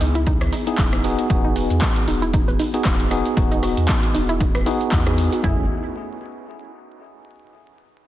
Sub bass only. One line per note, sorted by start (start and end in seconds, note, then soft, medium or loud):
0.01 0.37 C#2 medium
0.41 0.51 C#2 medium
0.78 1.15 E1 medium
1.30 1.67 E1 loud
1.70 1.80 E2 medium
2.08 2.44 E1 medium
2.48 2.57 E1 medium
2.85 3.22 E1 medium
3.37 3.73 E1 loud
3.77 3.87 E2 medium
4.14 4.51 E1 loud
4.55 4.64 E1 medium
4.92 5.29 E2 medium
5.44 5.68 F#1 loud